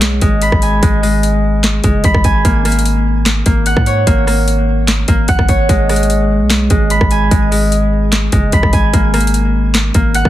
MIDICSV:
0, 0, Header, 1, 4, 480
1, 0, Start_track
1, 0, Key_signature, 5, "minor"
1, 0, Tempo, 405405
1, 979, Time_signature, 4, 2, 24, 8
1, 12187, End_track
2, 0, Start_track
2, 0, Title_t, "Harp"
2, 0, Program_c, 0, 46
2, 0, Note_on_c, 0, 56, 86
2, 0, Note_on_c, 0, 58, 82
2, 0, Note_on_c, 0, 73, 85
2, 0, Note_on_c, 0, 78, 91
2, 244, Note_off_c, 0, 56, 0
2, 258, Note_on_c, 0, 56, 79
2, 482, Note_off_c, 0, 78, 0
2, 498, Note_on_c, 0, 83, 92
2, 569, Note_off_c, 0, 58, 0
2, 740, Note_on_c, 0, 80, 84
2, 960, Note_off_c, 0, 56, 0
2, 974, Note_on_c, 0, 56, 94
2, 1079, Note_off_c, 0, 73, 0
2, 1202, Note_off_c, 0, 56, 0
2, 1217, Note_on_c, 0, 56, 86
2, 2099, Note_off_c, 0, 83, 0
2, 2161, Note_off_c, 0, 56, 0
2, 2175, Note_on_c, 0, 56, 76
2, 2420, Note_on_c, 0, 83, 97
2, 2516, Note_off_c, 0, 80, 0
2, 2655, Note_on_c, 0, 80, 96
2, 2899, Note_on_c, 0, 58, 90
2, 2958, Note_off_c, 0, 56, 0
2, 2970, Note_off_c, 0, 83, 0
2, 3135, Note_off_c, 0, 58, 0
2, 3140, Note_on_c, 0, 58, 84
2, 4094, Note_off_c, 0, 58, 0
2, 4099, Note_on_c, 0, 58, 76
2, 4338, Note_on_c, 0, 78, 94
2, 4431, Note_off_c, 0, 80, 0
2, 4578, Note_on_c, 0, 73, 84
2, 4814, Note_off_c, 0, 58, 0
2, 4819, Note_on_c, 0, 58, 96
2, 5051, Note_off_c, 0, 58, 0
2, 5056, Note_on_c, 0, 58, 82
2, 6013, Note_off_c, 0, 58, 0
2, 6017, Note_on_c, 0, 58, 88
2, 6242, Note_off_c, 0, 78, 0
2, 6258, Note_on_c, 0, 78, 98
2, 6490, Note_off_c, 0, 73, 0
2, 6495, Note_on_c, 0, 73, 90
2, 6742, Note_on_c, 0, 56, 94
2, 6967, Note_off_c, 0, 56, 0
2, 6981, Note_on_c, 0, 56, 89
2, 7924, Note_off_c, 0, 56, 0
2, 7938, Note_on_c, 0, 56, 79
2, 8162, Note_off_c, 0, 78, 0
2, 8178, Note_on_c, 0, 83, 94
2, 8250, Note_off_c, 0, 58, 0
2, 8421, Note_on_c, 0, 80, 87
2, 8640, Note_off_c, 0, 56, 0
2, 8654, Note_on_c, 0, 56, 91
2, 8759, Note_off_c, 0, 73, 0
2, 8883, Note_off_c, 0, 56, 0
2, 8898, Note_on_c, 0, 56, 82
2, 9779, Note_off_c, 0, 83, 0
2, 9842, Note_off_c, 0, 56, 0
2, 9856, Note_on_c, 0, 56, 75
2, 10100, Note_on_c, 0, 83, 98
2, 10197, Note_off_c, 0, 80, 0
2, 10335, Note_on_c, 0, 80, 93
2, 10579, Note_on_c, 0, 58, 89
2, 10638, Note_off_c, 0, 56, 0
2, 10650, Note_off_c, 0, 83, 0
2, 10815, Note_off_c, 0, 58, 0
2, 10819, Note_on_c, 0, 58, 87
2, 11773, Note_off_c, 0, 58, 0
2, 11778, Note_on_c, 0, 58, 79
2, 12018, Note_on_c, 0, 78, 95
2, 12111, Note_off_c, 0, 80, 0
2, 12187, Note_off_c, 0, 58, 0
2, 12187, Note_off_c, 0, 78, 0
2, 12187, End_track
3, 0, Start_track
3, 0, Title_t, "808-style bass"
3, 0, Program_c, 1, 38
3, 0, Note_on_c, 1, 35, 101
3, 241, Note_off_c, 1, 35, 0
3, 258, Note_on_c, 1, 32, 100
3, 604, Note_off_c, 1, 32, 0
3, 619, Note_on_c, 1, 32, 105
3, 964, Note_off_c, 1, 32, 0
3, 979, Note_on_c, 1, 32, 113
3, 2132, Note_off_c, 1, 32, 0
3, 2178, Note_on_c, 1, 30, 102
3, 2409, Note_off_c, 1, 30, 0
3, 2419, Note_on_c, 1, 32, 107
3, 2534, Note_off_c, 1, 32, 0
3, 2539, Note_on_c, 1, 32, 106
3, 2654, Note_off_c, 1, 32, 0
3, 2659, Note_on_c, 1, 32, 105
3, 2890, Note_off_c, 1, 32, 0
3, 2899, Note_on_c, 1, 32, 117
3, 4052, Note_off_c, 1, 32, 0
3, 4098, Note_on_c, 1, 32, 102
3, 4444, Note_off_c, 1, 32, 0
3, 4459, Note_on_c, 1, 44, 105
3, 4804, Note_off_c, 1, 44, 0
3, 4819, Note_on_c, 1, 32, 116
3, 5972, Note_off_c, 1, 32, 0
3, 6018, Note_on_c, 1, 32, 99
3, 6249, Note_off_c, 1, 32, 0
3, 6259, Note_on_c, 1, 32, 109
3, 6374, Note_off_c, 1, 32, 0
3, 6379, Note_on_c, 1, 32, 105
3, 6494, Note_off_c, 1, 32, 0
3, 6499, Note_on_c, 1, 32, 100
3, 6730, Note_off_c, 1, 32, 0
3, 6739, Note_on_c, 1, 32, 109
3, 7580, Note_on_c, 1, 35, 99
3, 7598, Note_off_c, 1, 32, 0
3, 7922, Note_off_c, 1, 35, 0
3, 7939, Note_on_c, 1, 32, 108
3, 8284, Note_off_c, 1, 32, 0
3, 8299, Note_on_c, 1, 32, 110
3, 8645, Note_off_c, 1, 32, 0
3, 8660, Note_on_c, 1, 32, 114
3, 9812, Note_off_c, 1, 32, 0
3, 9859, Note_on_c, 1, 30, 107
3, 10089, Note_off_c, 1, 30, 0
3, 10099, Note_on_c, 1, 32, 108
3, 10212, Note_off_c, 1, 32, 0
3, 10219, Note_on_c, 1, 32, 104
3, 10334, Note_off_c, 1, 32, 0
3, 10339, Note_on_c, 1, 32, 100
3, 10569, Note_off_c, 1, 32, 0
3, 10579, Note_on_c, 1, 32, 118
3, 11732, Note_off_c, 1, 32, 0
3, 11778, Note_on_c, 1, 32, 103
3, 12124, Note_off_c, 1, 32, 0
3, 12138, Note_on_c, 1, 44, 108
3, 12187, Note_off_c, 1, 44, 0
3, 12187, End_track
4, 0, Start_track
4, 0, Title_t, "Drums"
4, 18, Note_on_c, 9, 42, 84
4, 20, Note_on_c, 9, 38, 117
4, 30, Note_on_c, 9, 39, 89
4, 137, Note_off_c, 9, 42, 0
4, 139, Note_off_c, 9, 38, 0
4, 149, Note_off_c, 9, 39, 0
4, 254, Note_on_c, 9, 42, 78
4, 258, Note_on_c, 9, 36, 95
4, 372, Note_off_c, 9, 42, 0
4, 377, Note_off_c, 9, 36, 0
4, 492, Note_on_c, 9, 42, 76
4, 610, Note_off_c, 9, 42, 0
4, 619, Note_on_c, 9, 36, 99
4, 619, Note_on_c, 9, 37, 104
4, 734, Note_on_c, 9, 42, 75
4, 737, Note_off_c, 9, 36, 0
4, 737, Note_off_c, 9, 37, 0
4, 852, Note_off_c, 9, 42, 0
4, 979, Note_on_c, 9, 36, 116
4, 979, Note_on_c, 9, 42, 88
4, 1097, Note_off_c, 9, 42, 0
4, 1098, Note_off_c, 9, 36, 0
4, 1224, Note_on_c, 9, 46, 79
4, 1342, Note_off_c, 9, 46, 0
4, 1460, Note_on_c, 9, 42, 68
4, 1578, Note_off_c, 9, 42, 0
4, 1937, Note_on_c, 9, 42, 85
4, 1940, Note_on_c, 9, 38, 110
4, 1950, Note_on_c, 9, 39, 89
4, 2056, Note_off_c, 9, 42, 0
4, 2058, Note_off_c, 9, 38, 0
4, 2068, Note_off_c, 9, 39, 0
4, 2174, Note_on_c, 9, 42, 81
4, 2178, Note_on_c, 9, 36, 95
4, 2292, Note_off_c, 9, 42, 0
4, 2297, Note_off_c, 9, 36, 0
4, 2412, Note_on_c, 9, 42, 73
4, 2419, Note_on_c, 9, 36, 97
4, 2530, Note_off_c, 9, 42, 0
4, 2537, Note_off_c, 9, 36, 0
4, 2539, Note_on_c, 9, 36, 100
4, 2539, Note_on_c, 9, 37, 106
4, 2654, Note_on_c, 9, 42, 79
4, 2657, Note_off_c, 9, 36, 0
4, 2658, Note_off_c, 9, 37, 0
4, 2659, Note_on_c, 9, 36, 100
4, 2773, Note_off_c, 9, 42, 0
4, 2778, Note_off_c, 9, 36, 0
4, 2899, Note_on_c, 9, 36, 118
4, 2899, Note_on_c, 9, 42, 89
4, 3018, Note_off_c, 9, 36, 0
4, 3018, Note_off_c, 9, 42, 0
4, 3139, Note_on_c, 9, 37, 62
4, 3139, Note_on_c, 9, 42, 62
4, 3144, Note_on_c, 9, 46, 80
4, 3219, Note_off_c, 9, 42, 0
4, 3219, Note_on_c, 9, 42, 64
4, 3258, Note_off_c, 9, 37, 0
4, 3263, Note_off_c, 9, 46, 0
4, 3299, Note_off_c, 9, 42, 0
4, 3299, Note_on_c, 9, 42, 62
4, 3380, Note_off_c, 9, 42, 0
4, 3380, Note_on_c, 9, 42, 77
4, 3499, Note_off_c, 9, 42, 0
4, 3858, Note_on_c, 9, 42, 83
4, 3860, Note_on_c, 9, 38, 110
4, 3870, Note_on_c, 9, 39, 90
4, 3976, Note_off_c, 9, 42, 0
4, 3978, Note_off_c, 9, 38, 0
4, 3988, Note_off_c, 9, 39, 0
4, 4094, Note_on_c, 9, 42, 80
4, 4098, Note_on_c, 9, 36, 95
4, 4212, Note_off_c, 9, 42, 0
4, 4217, Note_off_c, 9, 36, 0
4, 4332, Note_on_c, 9, 42, 79
4, 4450, Note_off_c, 9, 42, 0
4, 4459, Note_on_c, 9, 36, 96
4, 4459, Note_on_c, 9, 37, 105
4, 4574, Note_on_c, 9, 42, 75
4, 4577, Note_off_c, 9, 36, 0
4, 4577, Note_off_c, 9, 37, 0
4, 4693, Note_off_c, 9, 42, 0
4, 4819, Note_on_c, 9, 36, 119
4, 4819, Note_on_c, 9, 42, 90
4, 4938, Note_off_c, 9, 36, 0
4, 4938, Note_off_c, 9, 42, 0
4, 5059, Note_on_c, 9, 37, 62
4, 5064, Note_on_c, 9, 46, 80
4, 5177, Note_off_c, 9, 37, 0
4, 5183, Note_off_c, 9, 46, 0
4, 5300, Note_on_c, 9, 42, 68
4, 5418, Note_off_c, 9, 42, 0
4, 5778, Note_on_c, 9, 42, 85
4, 5780, Note_on_c, 9, 38, 112
4, 5790, Note_on_c, 9, 39, 92
4, 5897, Note_off_c, 9, 42, 0
4, 5899, Note_off_c, 9, 38, 0
4, 5909, Note_off_c, 9, 39, 0
4, 6014, Note_on_c, 9, 42, 76
4, 6018, Note_on_c, 9, 36, 94
4, 6132, Note_off_c, 9, 42, 0
4, 6137, Note_off_c, 9, 36, 0
4, 6252, Note_on_c, 9, 42, 70
4, 6259, Note_on_c, 9, 36, 96
4, 6370, Note_off_c, 9, 42, 0
4, 6377, Note_off_c, 9, 36, 0
4, 6379, Note_on_c, 9, 36, 98
4, 6379, Note_on_c, 9, 37, 104
4, 6495, Note_on_c, 9, 42, 79
4, 6497, Note_off_c, 9, 36, 0
4, 6498, Note_off_c, 9, 37, 0
4, 6499, Note_on_c, 9, 36, 102
4, 6613, Note_off_c, 9, 42, 0
4, 6618, Note_off_c, 9, 36, 0
4, 6739, Note_on_c, 9, 36, 120
4, 6740, Note_on_c, 9, 42, 84
4, 6858, Note_off_c, 9, 36, 0
4, 6858, Note_off_c, 9, 42, 0
4, 6979, Note_on_c, 9, 37, 62
4, 6979, Note_on_c, 9, 42, 60
4, 6984, Note_on_c, 9, 46, 79
4, 7059, Note_off_c, 9, 42, 0
4, 7059, Note_on_c, 9, 42, 62
4, 7097, Note_off_c, 9, 37, 0
4, 7103, Note_off_c, 9, 46, 0
4, 7139, Note_off_c, 9, 42, 0
4, 7139, Note_on_c, 9, 42, 63
4, 7220, Note_off_c, 9, 42, 0
4, 7220, Note_on_c, 9, 42, 72
4, 7339, Note_off_c, 9, 42, 0
4, 7698, Note_on_c, 9, 42, 84
4, 7700, Note_on_c, 9, 38, 112
4, 7710, Note_on_c, 9, 39, 91
4, 7817, Note_off_c, 9, 42, 0
4, 7819, Note_off_c, 9, 38, 0
4, 7829, Note_off_c, 9, 39, 0
4, 7934, Note_on_c, 9, 42, 79
4, 7939, Note_on_c, 9, 36, 99
4, 8053, Note_off_c, 9, 42, 0
4, 8057, Note_off_c, 9, 36, 0
4, 8173, Note_on_c, 9, 42, 74
4, 8291, Note_off_c, 9, 42, 0
4, 8299, Note_on_c, 9, 36, 99
4, 8300, Note_on_c, 9, 37, 106
4, 8414, Note_on_c, 9, 42, 74
4, 8418, Note_off_c, 9, 36, 0
4, 8418, Note_off_c, 9, 37, 0
4, 8533, Note_off_c, 9, 42, 0
4, 8660, Note_on_c, 9, 36, 116
4, 8660, Note_on_c, 9, 42, 89
4, 8778, Note_off_c, 9, 36, 0
4, 8778, Note_off_c, 9, 42, 0
4, 8905, Note_on_c, 9, 46, 81
4, 9023, Note_off_c, 9, 46, 0
4, 9140, Note_on_c, 9, 42, 70
4, 9259, Note_off_c, 9, 42, 0
4, 9618, Note_on_c, 9, 42, 86
4, 9620, Note_on_c, 9, 38, 113
4, 9630, Note_on_c, 9, 39, 89
4, 9737, Note_off_c, 9, 42, 0
4, 9739, Note_off_c, 9, 38, 0
4, 9749, Note_off_c, 9, 39, 0
4, 9854, Note_on_c, 9, 42, 79
4, 9858, Note_on_c, 9, 36, 98
4, 9973, Note_off_c, 9, 42, 0
4, 9977, Note_off_c, 9, 36, 0
4, 10092, Note_on_c, 9, 42, 69
4, 10099, Note_on_c, 9, 36, 97
4, 10211, Note_off_c, 9, 42, 0
4, 10217, Note_off_c, 9, 36, 0
4, 10219, Note_on_c, 9, 36, 97
4, 10219, Note_on_c, 9, 37, 104
4, 10334, Note_on_c, 9, 42, 79
4, 10337, Note_off_c, 9, 36, 0
4, 10338, Note_off_c, 9, 37, 0
4, 10339, Note_on_c, 9, 36, 104
4, 10453, Note_off_c, 9, 42, 0
4, 10458, Note_off_c, 9, 36, 0
4, 10579, Note_on_c, 9, 36, 119
4, 10579, Note_on_c, 9, 42, 86
4, 10698, Note_off_c, 9, 36, 0
4, 10698, Note_off_c, 9, 42, 0
4, 10819, Note_on_c, 9, 37, 64
4, 10819, Note_on_c, 9, 42, 65
4, 10824, Note_on_c, 9, 46, 77
4, 10899, Note_off_c, 9, 42, 0
4, 10899, Note_on_c, 9, 42, 61
4, 10937, Note_off_c, 9, 37, 0
4, 10943, Note_off_c, 9, 46, 0
4, 10979, Note_off_c, 9, 42, 0
4, 10979, Note_on_c, 9, 42, 64
4, 11060, Note_off_c, 9, 42, 0
4, 11060, Note_on_c, 9, 42, 74
4, 11178, Note_off_c, 9, 42, 0
4, 11537, Note_on_c, 9, 42, 85
4, 11540, Note_on_c, 9, 38, 111
4, 11550, Note_on_c, 9, 39, 92
4, 11656, Note_off_c, 9, 42, 0
4, 11658, Note_off_c, 9, 38, 0
4, 11668, Note_off_c, 9, 39, 0
4, 11774, Note_on_c, 9, 42, 80
4, 11778, Note_on_c, 9, 36, 99
4, 11892, Note_off_c, 9, 42, 0
4, 11896, Note_off_c, 9, 36, 0
4, 12011, Note_on_c, 9, 42, 79
4, 12130, Note_off_c, 9, 42, 0
4, 12138, Note_on_c, 9, 36, 94
4, 12139, Note_on_c, 9, 37, 102
4, 12187, Note_off_c, 9, 36, 0
4, 12187, Note_off_c, 9, 37, 0
4, 12187, End_track
0, 0, End_of_file